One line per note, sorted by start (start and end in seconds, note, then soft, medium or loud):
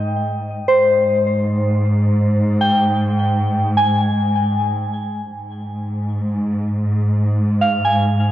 0.00 0.65 G#2 medium
0.00 0.20 D#5 medium
0.00 0.41 G5 soft
0.68 5.26 G#2 medium
0.68 2.12 C5 medium
2.61 4.04 G5 medium
3.77 5.20 G#5 medium
5.31 8.32 G#2 medium
7.61 8.32 F5 medium
7.85 8.32 G#5 soft